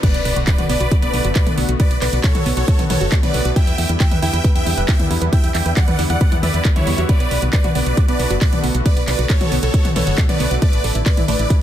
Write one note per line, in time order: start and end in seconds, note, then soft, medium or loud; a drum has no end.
0.03 0.06 B3 loud
0.03 0.37 B4 medium
0.03 0.37 D5 loud
0.03 kick loud
0.03 closed hi-hat medium
0.03 crash loud
0.03 impact medium
0.14 0.21 B1 medium
0.14 0.19 B3 medium
0.14 closed hi-hat medium
0.25 0.32 B1 loud
0.25 0.33 D3 medium
0.25 0.33 A3 medium
0.25 0.33 B3 medium
0.25 0.33 F#4 medium
0.25 0.33 B4 medium
0.25 open hi-hat loud
0.36 0.43 B1 medium
0.36 0.52 D3 medium
0.36 0.52 A3 medium
0.36 0.52 B3 medium
0.36 0.41 F#4 medium
0.36 0.52 F#4 medium
0.36 closed hi-hat medium
0.47 0.52 B2 medium
0.47 0.64 B4 medium
0.47 0.64 D5 medium
0.47 kick loud
0.47 clap loud
0.47 closed hi-hat medium
0.58 0.65 B1 medium
0.58 0.61 F#4 loud
0.58 closed hi-hat medium
0.58 mid tom medium
0.69 0.76 B1 loud
0.69 0.85 D3 medium
0.69 0.85 A3 medium
0.69 0.77 B3 loud
0.69 0.85 B3 medium
0.69 0.85 F#4 medium
0.69 0.95 B4 medium
0.69 0.95 D5 loud
0.69 0.95 D5 medium
0.69 open hi-hat loud
0.80 0.87 B1 loud
0.80 0.86 F#4 medium
0.80 closed hi-hat medium
0.91 1.07 D3 medium
0.91 1.07 A3 medium
0.91 1.07 B3 medium
0.91 1.07 F#4 medium
0.91 0.95 F#4 loud
0.91 kick loud
0.91 closed hi-hat medium
1.02 1.09 B1 medium
1.02 1.08 B3 medium
1.02 1.28 B4 medium
1.02 1.28 D5 loud
1.02 1.28 D5 medium
1.02 closed hi-hat medium
1.13 1.20 B1 loud
1.13 1.21 D3 medium
1.13 1.21 A3 medium
1.13 1.21 B3 medium
1.13 1.21 F#4 medium
1.13 1.21 B4 medium
1.13 open hi-hat loud
1.24 1.31 F#1 medium
1.24 1.32 D3 medium
1.24 1.32 A3 medium
1.24 1.32 B3 medium
1.24 1.28 F#4 loud
1.24 1.32 F#4 medium
1.24 closed hi-hat medium
1.35 1.41 B2 medium
1.35 1.43 D3 medium
1.35 1.43 A3 medium
1.35 1.43 B3 medium
1.35 1.43 F#4 medium
1.35 1.53 B4 medium
1.35 1.53 D5 medium
1.35 kick loud
1.35 clap loud
1.35 closed hi-hat medium
1.47 1.53 B1 medium
1.47 1.62 D3 medium
1.47 1.62 A3 medium
1.47 1.62 B3 medium
1.47 1.52 B3 medium
1.47 1.62 F#4 medium
1.47 closed hi-hat medium
1.47 mid tom medium
1.58 1.64 B1 loud
1.58 1.65 B3 loud
1.58 open hi-hat loud
1.69 1.75 B1 medium
1.69 1.76 D3 medium
1.69 1.76 A3 medium
1.69 1.76 B3 medium
1.69 1.77 F#4 medium
1.69 1.74 F#4 medium
1.69 closed hi-hat medium
1.80 1.83 B3 loud
1.80 1.97 B4 medium
1.80 1.97 D5 medium
1.80 kick loud
1.80 closed hi-hat medium
1.91 1.98 B1 medium
1.91 1.96 B3 medium
1.91 closed hi-hat medium
2.02 2.09 B1 loud
2.02 2.10 D3 medium
2.02 2.10 A3 medium
2.02 2.10 B3 medium
2.02 2.10 F#4 medium
2.02 2.19 B4 medium
2.02 2.10 B4 medium
2.02 2.19 D5 medium
2.02 clap medium
2.02 open hi-hat loud
2.13 2.20 B1 medium
2.13 2.28 D3 medium
2.13 2.28 A3 medium
2.13 2.28 B3 medium
2.13 2.28 F#4 medium
2.13 2.18 F#4 medium
2.13 closed hi-hat medium
2.24 2.29 B2 medium
2.24 2.49 A4 medium
2.24 2.49 C#5 loud
2.24 2.50 C#5 loud
2.24 kick loud
2.24 clap loud
2.24 closed hi-hat medium
2.35 2.42 B1 medium
2.35 2.38 F#4 loud
2.35 closed hi-hat medium
2.35 mid tom medium
2.46 2.53 B1 loud
2.46 2.61 D3 medium
2.46 2.61 A3 medium
2.46 2.54 B3 loud
2.46 2.61 B3 medium
2.46 2.61 F#4 medium
2.46 open hi-hat loud
2.57 2.64 B1 medium
2.57 2.62 F#4 medium
2.57 2.82 A4 medium
2.57 2.82 C#5 loud
2.57 2.83 C#5 loud
2.57 closed hi-hat medium
2.68 2.83 D3 medium
2.68 2.83 A3 medium
2.68 2.83 B3 medium
2.68 2.71 F#4 loud
2.68 2.83 F#4 medium
2.68 kick loud
2.68 closed hi-hat medium
2.79 2.86 B1 medium
2.79 2.84 B3 medium
2.79 closed hi-hat medium
2.79 mid tom medium
2.90 2.97 B1 loud
2.90 2.98 D3 medium
2.90 2.98 A3 medium
2.90 2.98 B3 medium
2.90 2.98 F#4 medium
2.90 3.16 A4 medium
2.90 2.98 B4 medium
2.90 3.16 C#5 loud
2.90 3.16 C#5 medium
2.90 open hi-hat loud
2.90 mid tom medium
3.01 3.08 F#1 medium
3.01 3.09 D3 medium
3.01 3.09 A3 medium
3.01 3.09 B3 medium
3.01 3.04 F#4 loud
3.01 3.09 F#4 medium
3.01 closed hi-hat medium
3.12 3.17 B2 medium
3.12 3.20 D3 medium
3.12 3.20 A3 medium
3.12 3.20 B3 medium
3.12 3.20 F#4 medium
3.12 kick loud
3.12 clap loud
3.12 closed hi-hat medium
3.23 3.30 B1 medium
3.23 3.39 D3 medium
3.23 3.39 A3 medium
3.23 3.39 B3 loud
3.23 3.28 B3 medium
3.23 3.39 F#4 medium
3.23 3.49 B4 medium
3.23 3.49 D5 medium
3.23 3.49 D5 loud
3.23 closed hi-hat medium
3.23 mid tom medium
3.34 3.41 B1 loud
3.34 3.42 B3 loud
3.34 open hi-hat loud
3.45 3.52 B1 medium
3.45 3.53 D3 medium
3.45 3.53 A3 medium
3.45 3.53 B3 medium
3.45 3.53 F#4 medium
3.45 3.50 F#4 medium
3.45 closed hi-hat medium
3.56 3.59 E4 loud
3.56 3.90 E5 medium
3.56 3.90 G5 loud
3.56 kick loud
3.56 closed hi-hat medium
3.67 3.74 E2 medium
3.67 3.72 E4 medium
3.67 closed hi-hat medium
3.78 3.85 E2 loud
3.78 3.86 D3 medium
3.78 3.86 G3 medium
3.78 3.86 B3 medium
3.78 3.86 E4 medium
3.78 3.86 E5 medium
3.78 open hi-hat loud
3.89 3.96 E2 medium
3.89 4.05 D3 medium
3.89 4.05 G3 medium
3.89 4.05 B3 medium
3.89 4.05 E4 medium
3.89 3.94 B4 medium
3.89 closed hi-hat medium
4.00 4.05 E3 medium
4.00 4.17 E5 medium
4.00 4.17 G5 medium
4.00 kick loud
4.00 clap loud
4.00 closed hi-hat medium
4.11 4.18 E2 medium
4.11 4.14 B4 loud
4.11 closed hi-hat medium
4.11 mid tom medium
4.22 4.29 E2 loud
4.22 4.38 D3 medium
4.22 4.38 G3 medium
4.22 4.38 B3 medium
4.22 4.30 E4 loud
4.22 4.38 E4 medium
4.22 4.48 E5 medium
4.22 4.48 G5 medium
4.22 4.48 G5 loud
4.22 open hi-hat loud
4.33 4.40 E2 medium
4.33 4.39 B4 medium
4.33 closed hi-hat medium
4.44 4.60 D3 medium
4.44 4.60 G3 medium
4.44 4.60 B3 medium
4.44 4.60 E4 medium
4.44 4.47 B4 loud
4.44 kick loud
4.44 closed hi-hat medium
4.55 4.62 E2 medium
4.55 4.61 E4 medium
4.55 4.81 E5 medium
4.55 4.81 G5 medium
4.55 4.81 G5 loud
4.55 closed hi-hat medium
4.66 4.73 E2 loud
4.66 4.74 D3 medium
4.66 4.74 G3 medium
4.66 4.74 B3 medium
4.66 4.74 E4 medium
4.66 4.74 E5 medium
4.66 open hi-hat loud
4.77 4.84 E1 medium
4.77 4.85 D3 medium
4.77 4.85 G3 medium
4.77 4.85 B3 medium
4.77 4.85 E4 medium
4.77 4.81 B4 loud
4.77 closed hi-hat medium
4.88 4.96 D3 medium
4.88 4.94 E3 medium
4.88 4.96 G3 medium
4.88 4.96 B3 medium
4.88 4.96 E4 medium
4.88 5.06 E5 medium
4.88 5.06 G5 medium
4.88 kick loud
4.88 clap loud
4.88 closed hi-hat medium
4.99 5.06 E2 medium
4.99 5.15 D3 medium
4.99 5.15 G3 loud
4.99 5.15 B3 medium
4.99 5.05 E4 medium
4.99 5.15 E4 medium
4.99 closed hi-hat medium
4.99 mid tom medium
5.10 5.17 E2 loud
5.10 5.18 E4 loud
5.10 open hi-hat loud
5.22 5.28 E2 loud
5.22 5.29 D3 medium
5.22 5.29 G3 medium
5.22 5.29 B3 medium
5.22 5.29 E4 medium
5.22 5.27 B4 medium
5.22 closed hi-hat medium
5.33 5.36 E4 loud
5.33 5.50 E5 medium
5.33 5.50 G5 medium
5.33 kick loud
5.33 closed hi-hat medium
5.44 5.50 E2 medium
5.44 5.49 E4 medium
5.44 closed hi-hat soft
5.55 5.61 E2 loud
5.55 5.62 D3 medium
5.55 5.62 G3 medium
5.55 5.62 B3 medium
5.55 5.62 E4 medium
5.55 5.72 E5 medium
5.55 5.62 E5 medium
5.55 5.72 G5 medium
5.55 clap medium
5.55 open hi-hat loud
5.66 5.73 E2 medium
5.66 5.81 D3 medium
5.66 5.81 G3 medium
5.66 5.81 B3 medium
5.66 5.81 E4 medium
5.66 5.71 B4 medium
5.66 closed hi-hat medium
5.77 5.82 E3 medium
5.77 6.02 D5 medium
5.77 6.02 F#5 loud
5.77 kick loud
5.77 clap loud
5.77 closed hi-hat medium
5.88 5.95 E2 medium
5.88 5.91 B4 loud
5.88 closed hi-hat medium
5.88 mid tom medium
5.99 6.06 E2 loud
5.99 6.14 D3 medium
5.99 6.14 G3 medium
5.99 6.14 B3 medium
5.99 6.07 E4 loud
5.99 6.14 E4 medium
5.99 open hi-hat loud
6.10 6.17 E2 medium
6.10 6.15 B4 medium
6.10 6.36 D5 medium
6.10 6.35 F#5 medium
6.10 6.35 F#5 loud
6.10 closed hi-hat soft
6.21 6.36 D3 medium
6.21 6.36 G3 medium
6.21 6.36 B3 medium
6.21 6.36 E4 medium
6.21 6.24 B4 loud
6.21 kick loud
6.21 closed hi-hat medium
6.32 6.39 E2 medium
6.32 6.37 E4 medium
6.32 closed hi-hat medium
6.32 mid tom medium
6.43 6.50 E2 loud
6.43 6.51 D3 medium
6.43 6.51 G3 medium
6.43 6.51 B3 medium
6.43 6.51 E4 medium
6.43 6.69 B4 medium
6.43 6.69 D5 medium
6.43 6.69 D5 loud
6.43 6.48 E5 medium
6.43 open hi-hat loud
6.43 mid tom medium
6.54 6.61 E2 medium
6.54 6.62 D3 medium
6.54 6.62 G3 medium
6.54 6.62 B3 medium
6.54 6.62 E4 medium
6.54 6.59 E4 medium
6.54 closed hi-hat medium
6.65 6.73 D3 medium
6.65 6.73 G3 medium
6.65 6.73 B3 medium
6.65 6.73 E4 medium
6.65 kick loud
6.65 clap loud
6.65 closed hi-hat medium
6.76 6.83 D2 medium
6.76 6.91 D3 medium
6.76 6.91 G3 medium
6.76 6.91 B3 medium
6.76 7.02 E4 medium
6.76 6.91 E4 medium
6.76 6.84 E4 medium
6.76 7.02 C#5 loud
6.76 closed hi-hat medium
6.76 mid tom medium
6.87 6.94 E2 loud
6.87 6.95 B3 medium
6.87 open hi-hat loud
6.98 7.05 E2 medium
6.98 7.06 D3 medium
6.98 7.06 G3 medium
6.98 7.06 B3 medium
6.98 7.06 E4 medium
6.98 7.06 F#4 loud
6.98 closed hi-hat medium
7.09 7.12 B3 loud
7.09 7.43 B4 medium
7.09 7.43 D5 loud
7.09 kick loud
7.09 closed hi-hat medium
7.20 7.27 B1 medium
7.20 7.25 B3 medium
7.20 closed hi-hat medium
7.31 7.38 B1 loud
7.31 7.39 D3 medium
7.31 7.39 A3 medium
7.31 7.39 B3 medium
7.31 7.39 F#4 medium
7.31 7.39 B4 medium
7.31 open hi-hat loud
7.42 7.49 B1 medium
7.42 7.58 D3 medium
7.42 7.58 A3 medium
7.42 7.58 B3 medium
7.42 7.58 F#4 medium
7.42 7.47 F#4 medium
7.42 closed hi-hat medium
7.53 7.58 B2 medium
7.53 7.70 B4 medium
7.53 7.70 D5 medium
7.53 kick loud
7.53 clap loud
7.53 closed hi-hat medium
7.64 7.71 B1 medium
7.64 7.67 F#4 loud
7.64 closed hi-hat medium
7.64 mid tom medium
7.75 7.82 B1 loud
7.75 7.91 D3 medium
7.75 7.91 A3 medium
7.75 7.91 B3 medium
7.75 7.83 B3 loud
7.75 7.91 F#4 medium
7.75 8.01 B4 medium
7.75 8.01 D5 medium
7.75 8.01 D5 loud
7.75 open hi-hat loud
7.86 7.93 B1 medium
7.86 7.92 F#4 medium
7.86 closed hi-hat medium
7.97 8.13 D3 medium
7.97 8.13 A3 medium
7.97 8.13 B3 medium
7.97 8.00 F#4 loud
7.97 8.13 F#4 medium
7.97 kick loud
7.97 closed hi-hat medium
8.08 8.15 B1 medium
8.08 8.14 B3 medium
8.08 8.34 B4 medium
8.08 8.34 D5 medium
8.08 8.34 D5 loud
8.08 closed hi-hat medium
8.19 8.26 B1 loud
8.19 8.27 D3 medium
8.19 8.27 A3 medium
8.19 8.27 B3 medium
8.19 8.27 F#4 medium
8.19 8.27 B4 medium
8.19 open hi-hat loud
8.30 8.37 F#1 medium
8.30 8.38 D3 medium
8.30 8.38 A3 medium
8.30 8.38 B3 medium
8.30 8.34 F#4 loud
8.30 8.38 F#4 medium
8.30 closed hi-hat medium
8.41 8.47 B2 medium
8.41 8.49 D3 medium
8.41 8.49 A3 medium
8.41 8.49 B3 medium
8.41 8.49 F#4 medium
8.41 8.59 B4 medium
8.41 8.59 D5 loud
8.41 8.59 D5 medium
8.41 kick loud
8.41 clap loud
8.41 closed hi-hat medium
8.52 8.59 B1 medium
8.52 8.68 D3 medium
8.52 8.68 A3 medium
8.52 8.68 B3 medium
8.52 8.58 B3 medium
8.52 8.68 F#4 medium
8.52 closed hi-hat medium
8.52 mid tom medium
8.63 8.70 B1 loud
8.63 8.71 B3 loud
8.63 open hi-hat loud
8.74 8.81 B1 medium
8.74 8.82 D3 medium
8.74 8.82 A3 medium
8.74 8.82 B3 medium
8.74 8.82 F#4 medium
8.74 8.80 F#4 medium
8.74 closed hi-hat medium
8.86 8.89 B3 loud
8.86 9.03 B4 medium
8.86 9.03 D5 medium
8.86 kick loud
8.86 closed hi-hat medium
8.97 9.03 B1 medium
8.97 9.02 B3 medium
8.97 closed hi-hat medium
9.07 9.14 B1 loud
9.07 9.15 D3 medium
9.07 9.15 A3 medium
9.07 9.15 B3 medium
9.07 9.15 F#4 medium
9.07 9.25 B4 medium
9.07 9.15 B4 medium
9.07 9.25 D5 medium
9.07 clap medium
9.07 open hi-hat loud
9.19 9.26 B1 loud
9.19 9.34 D3 medium
9.19 9.34 A3 medium
9.19 9.34 B3 medium
9.19 9.24 F#4 medium
9.19 9.34 F#4 medium
9.19 closed hi-hat medium
9.30 9.35 B2 medium
9.30 9.55 A4 medium
9.30 9.55 C#5 medium
9.30 9.55 C#5 loud
9.30 kick loud
9.30 clap loud
9.30 closed hi-hat medium
9.41 9.48 B1 medium
9.41 9.44 F#4 loud
9.41 closed hi-hat medium
9.41 mid tom medium
9.52 9.59 B1 loud
9.52 9.67 D3 medium
9.52 9.67 A3 medium
9.52 9.59 B3 loud
9.52 9.67 B3 medium
9.52 9.67 F#4 medium
9.52 open hi-hat loud
9.63 9.70 B1 medium
9.63 9.68 F#4 medium
9.63 9.88 A4 medium
9.63 9.88 C#5 loud
9.63 closed hi-hat medium
9.74 9.89 D3 medium
9.74 9.89 A3 medium
9.74 9.89 B3 medium
9.74 9.77 F#4 loud
9.74 9.89 F#4 medium
9.74 kick loud
9.74 closed hi-hat medium
9.85 9.92 B1 medium
9.85 9.90 B3 medium
9.85 closed hi-hat medium
9.85 mid tom medium
9.96 10.03 B1 loud
9.96 10.04 D3 medium
9.96 10.04 A3 medium
9.96 10.04 B3 medium
9.96 10.04 F#4 medium
9.96 10.21 A4 medium
9.96 10.04 B4 medium
9.96 10.21 C#5 medium
9.96 10.21 C#5 loud
9.96 open hi-hat loud
9.96 mid tom medium
10.07 10.14 F#1 medium
10.07 10.15 D3 medium
10.07 10.15 A3 medium
10.07 10.15 B3 medium
10.07 10.15 F#4 medium
10.07 10.10 F#4 loud
10.07 closed hi-hat medium
10.18 10.23 B2 medium
10.18 10.26 D3 medium
10.18 10.26 A3 medium
10.18 10.26 B3 medium
10.18 10.26 F#4 medium
10.18 kick loud
10.18 clap loud
10.18 closed hi-hat medium
10.29 10.36 B1 medium
10.29 10.45 D3 medium
10.29 10.45 A3 medium
10.29 10.34 B3 medium
10.29 10.45 B3 medium
10.29 10.45 F#4 medium
10.29 10.55 B4 medium
10.29 10.54 D5 loud
10.29 10.55 D5 loud
10.29 closed hi-hat medium
10.29 mid tom medium
10.40 10.47 B1 loud
10.40 10.48 B3 loud
10.40 open hi-hat loud
10.51 10.58 B1 medium
10.51 10.59 D3 medium
10.51 10.59 A3 medium
10.51 10.59 B3 medium
10.51 10.56 F#4 medium
10.51 10.59 F#4 medium
10.51 closed hi-hat medium
10.62 10.65 A3 loud
10.62 10.96 B4 medium
10.62 10.96 D5 loud
10.62 kick loud
10.62 closed hi-hat medium
10.73 10.80 A1 medium
10.73 10.78 A3 medium
10.73 closed hi-hat medium
10.84 10.91 A1 loud
10.84 10.92 D3 medium
10.84 10.92 E3 medium
10.84 10.92 A3 medium
10.84 10.92 E4 medium
10.84 10.92 A4 medium
10.84 open hi-hat loud
10.95 11.02 A1 loud
10.95 11.11 D3 medium
10.95 11.11 E3 medium
10.95 11.11 A3 medium
10.95 11.00 E4 medium
10.95 11.11 E4 medium
10.95 closed hi-hat medium
11.06 11.11 A2 medium
11.06 11.23 B4 medium
11.06 11.23 D5 medium
11.06 kick loud
11.06 clap loud
11.06 closed hi-hat medium
11.17 11.24 A1 medium
11.17 11.20 E4 loud
11.17 closed hi-hat medium
11.17 mid tom medium
11.28 11.35 A1 loud
11.28 11.44 D3 medium
11.28 11.44 E3 medium
11.28 11.36 A3 loud
11.28 11.44 A3 medium
11.28 11.44 E4 medium
11.28 11.54 B4 medium
11.28 11.54 D5 loud
11.28 11.54 D5 medium
11.28 open hi-hat loud
11.39 11.46 A1 medium
11.39 11.44 E4 medium
11.39 closed hi-hat medium
11.50 11.62 D3 medium
11.50 11.62 E3 medium
11.50 11.62 A3 medium
11.50 11.53 E4 loud
11.50 11.62 E4 medium
11.50 kick loud
11.50 closed hi-hat medium